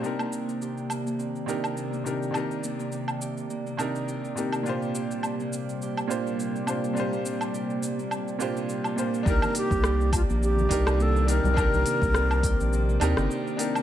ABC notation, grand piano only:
X:1
M:4/4
L:1/8
Q:"Swing 16ths" 1/4=104
K:Cm
V:1 name="Grand piano"
[C,DEGB]4- [C,DEGB] [C,DEGB]2 [C,DEGB] | [C,DEGB]4- [C,DEGB] [C,DEGB]2 [C,DEGB] | [B,,DFGc]4- [B,,DFGc] [B,,DFGc]2 [B,,DFGc] | [B,,DFGc]4- [B,,DFGc] [B,,DFGc]2 [B,,DFGc] |
[DEGB]4- [DEGB] [DEGB]2 [DEGB] | [DEGB]4- [DEGB] [DEGB]2 [DEGB] |]